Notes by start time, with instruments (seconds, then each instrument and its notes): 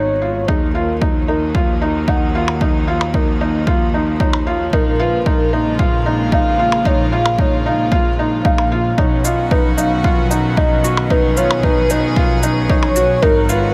Already playing: double bass section G#1, string section D#3 F#3 G#3 B3 F#4, felt piano D#4, soft synth lead C#5
0.22 felt piano F4
0.48 double bass section D#2, string section D#3 F3 F#3 A#3 D#4, felt piano D#4, soft synth lead G#4, kick
0.75 felt piano F4, soft synth lead A#4
1.01 felt piano D#4, soft synth lead F#4, kick
1.28 felt piano D#4, soft synth lead A#4
1.55 felt piano F4, kick
1.81 felt piano D#4
2.08 felt piano D#4, soft synth lead F#5, kick
2.35 felt piano F4
2.48 percussion blips
2.60 felt piano D#4, soft synth lead D#5, kick
2.88 felt piano F4, soft synth lead F5
3.01 percussion blips
3.14 felt piano D#4, soft synth lead A#4, kick
3.41 felt piano D#4, soft synth lead D#5
3.67 felt piano F4, kick
3.94 felt piano D#4
4.20 felt piano D#4, soft synth lead C#5, kick
4.33 percussion blips
4.47 felt piano F4
4.73 double bass section A#1, string section C#3 G#3 A#3 F4, felt piano D#4, soft synth lead A#4, kick
4.99 felt piano F4, soft synth lead B4
5.26 felt piano D#4, soft synth lead A#4, kick
5.53 felt piano D#4, soft synth lead D#5
5.79 felt piano F4, kick
6.06 felt piano D#4
6.32 felt piano D#4, soft synth lead F5, kick
6.59 felt piano F4
6.72 percussion blips
6.85 felt piano D#4, soft synth lead C#5, kick
7.12 felt piano F4, soft synth lead F5
7.26 percussion blips
7.39 felt piano D#4, soft synth lead C#5, kick
7.66 felt piano D#4, soft synth lead F5
7.92 felt piano F4, kick
8.19 felt piano D#4
8.45 felt piano D#4, soft synth lead F5, kick
8.58 percussion blips
8.72 felt piano F4
8.98 double bass section B1, string section D#3 F#3 B3 C#4 F#4, felt piano D#4, soft synth lead C#5, kick
9.24 felt piano F4, soft synth lead D#5, shaker
9.51 felt piano D#4, soft synth lead B4, kick
9.77 felt piano D#4, soft synth lead F5, shaker
10.04 felt piano F4, kick
10.30 felt piano D#4, shaker
10.57 felt piano D#4, soft synth lead D#5, kick
10.84 felt piano F#4, shaker
10.97 percussion blips
11.10 felt piano D#4, string section G#4, soft synth lead B4, kick
11.37 felt piano F4, soft synth lead C#5, shaker
11.51 percussion blips
11.63 felt piano D#4, soft synth lead B4, kick
11.90 felt piano D#4, soft synth lead D#5, shaker
12.16 felt piano F4, kick
12.43 felt piano D#4, shaker
12.70 felt piano D#4, soft synth lead C#5, kick
12.83 percussion blips
12.96 felt piano F#4, shaker
13.22 double bass section G#1, string section D#3 G#3 B3 F#4, felt piano D#4, soft synth lead A#4, kick
13.48 felt piano F4, soft synth lead B4, shaker